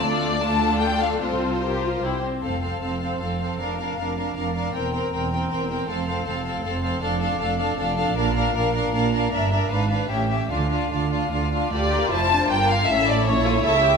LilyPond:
<<
  \new Staff \with { instrumentName = "Violin section" } { \time 3/4 \key f \major \tempo 4 = 156 d''4 a''4 g''8 f''8 | c''2~ c''8 r8 | f''8 f''8 f''8 f''8 f''8 f''8 | f''8 f''8 f''8 f''8 f''8 f''8 |
g''8 g''8 g''8 g''8 g''8 g''8 | f''8 f''8 f''8 f''8 f''8 f''8 | \key d \minor f''8 f''8 f''8 f''8 f''8 f''8 | f''8 f''8 f''8 f''8 f''8 f''8 |
e''8 e''8 eis''8 eis''8 e''8 e''8 | f''8 f''8 f''8 f''8 f''8 f''8 | d''4 a''4 g''8 f''8 | e''8 d''8 cis''4. r8 | }
  \new Staff \with { instrumentName = "Violin section" } { \time 3/4 \key f \major << { a'4 a'2 | a'4 bes'4 c''8 r8 | a'8 a'8 a'8 a'8 a'8 a'8 | bes'8 bes'8 bes'8 bes'8 bes'8 bes'8 |
bes'8 bes'8 bes'8 bes'8 bes'8 bes'8 | a'8 a'8 a'8 a'8 a'8 a'8 | \key d \minor a'8 a'8 a'8 a'8 a'8 a'8 | bes'8 bes'8 bes'8 bes'8 bes'8 bes'8 |
bes'8 bes'8 b'8 b'8 g'8 g'8 | f'8 f'8 f'8 f'8 f'8 f'8 | a'8 bes'8 c''4 bes'4 | a'2 a'8 g'8 | } \\ { f'4 f'2 | f'2 g'8 r8 | r2. | r2. |
r2. | r2. | r2. | r2. |
r2. | r2. | f'4 e'8 d'4. | cis'4 cis'8 f'8 e'4 | } >> }
  \new Staff \with { instrumentName = "Viola section" } { \time 3/4 \key f \major <a d'>4 <a d'>2 | <c' f'>4 g'8 f'8 e'8 c'8 | c'8 c'8 c'8 c'8 c'8 c'8 | d'8 d'8 d'8 d'8 d'8 d'8 |
c'8 c'8 c'8 c'8 c'8 c'8 | c'8 c'8 c'8 c'8 c'8 c'8 | \key d \minor d'8 d'8 d'8 d'8 d'8 d'8 | d'8 d'8 d'8 d'8 d'8 d'8 |
d'8 d'8 d'8 d'8 cis'8 cis'8 | d'8 d'8 d'8 d'8 d'8 d'8 | g'4 f'2 | e'4 e'4 e''4 | }
  \new Staff \with { instrumentName = "Cello section" } { \clef bass \time 3/4 \key f \major d,2. | c,2 c,8 r8 | f,4 f,4 f,4 | f,4 f,4 f,4 |
e,4 e,4 e,4 | f,4 f,4 f,4 | \key d \minor f,4 f,4 f,4 | bes,4 bes,4 bes,4 |
g,4 gis,4 a,4 | d4 d4 d4 | d,4 f,4 g,4 | a,4 bes,4 cis4 | }
  \new Staff \with { instrumentName = "Double bass section" } { \clef bass \time 3/4 \key f \major d,2. | c,2 c,8 r8 | f,,4 f,,4 f,,4 | f,,4 f,,4 f,,4 |
e,,4 e,,4 e,,4 | f,,4 f,,4 f,,4 | \key d \minor f,,4 f,,4 f,,4 | bes,,4 bes,,4 bes,,4 |
g,,4 gis,,4 a,,4 | d,4 d,4 d,4 | d,4 f,,4 g,,4 | a,,4 bes,,4 cis,4 | }
>>